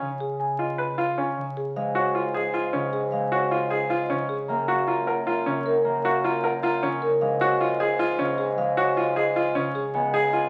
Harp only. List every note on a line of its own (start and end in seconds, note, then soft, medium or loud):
0.01 1.36 C#3 medium
1.37 1.78 C#3 soft
1.76 3.12 G#3 medium
2.74 4.08 C#3 medium
3.13 4.51 G#3 medium
4.10 4.50 C#3 medium
4.49 5.84 A#3 medium
5.46 6.82 C#3 medium
5.85 9.75 A#3 medium
6.83 7.23 C#3 medium
7.21 8.57 G#3 medium
8.19 9.54 C#3 medium
8.58 10.49 G#3 medium
9.55 9.96 C#3 medium
9.94 10.49 B3 medium